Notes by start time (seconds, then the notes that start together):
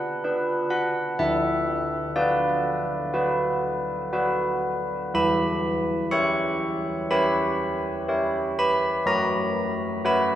Already playing: D4 B4 F#5
0.24 D4 B4
0.70 F#5
1.19 D3 E5
2.16 F#4 B4 D5
3.13 F#4 B4
4.13 F#4 B4
5.14 E3 B5
6.11 G4 C#5 C#6
7.11 G4 C#5 B5
8.08 G4 C#5
8.59 B5
9.06 F#3 A#5
10.05 F#4 C#5 B5